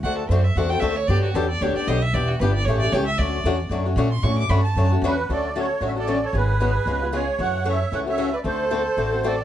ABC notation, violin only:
X:1
M:4/4
L:1/8
Q:"Swing" 1/4=228
K:D
V:1 name="Violin"
f A =c e f g e ^c | d F A d c d _e =e | d F B d c d c e | d4 z3 =c' |
c' d' b a2 z F2 | A2 A2 c A2 A | ^G6 G2 | c2 c2 c c2 B |
A6 A2 |]